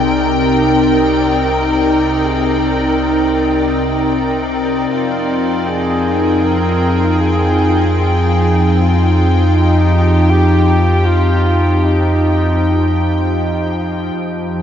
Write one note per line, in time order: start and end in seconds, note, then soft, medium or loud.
0.00 4.87 C2 medium
0.00 4.92 C3 medium
0.00 14.14 C4 medium
0.00 14.62 D#4 medium
0.00 0.32 G#4 medium
0.00 4.92 A#4 medium
0.00 6.97 A#4 medium
0.00 5.65 D5 medium
0.00 4.91 G5 medium
0.30 1.57 G4 medium
1.85 2.25 G4 medium
2.23 2.64 G#4 medium
2.62 3.77 A#4 medium
4.91 14.11 F2 medium
4.91 14.62 F3 medium
4.91 5.69 F4 medium
4.91 14.16 F4 medium
4.91 14.16 G5 medium
5.65 9.52 G#4 medium
5.65 6.46 G#4 loud
6.44 7.22 A#4 loud
6.67 14.62 G5 medium
7.20 7.98 G#4 loud
7.99 9.10 G#4 medium
9.31 14.15 G4 medium
9.53 10.32 D#4 medium
10.30 11.07 G4 loud
11.06 11.86 F4 medium
11.85 13.76 D#4 medium
14.14 14.62 F2 medium
14.51 14.62 C4 medium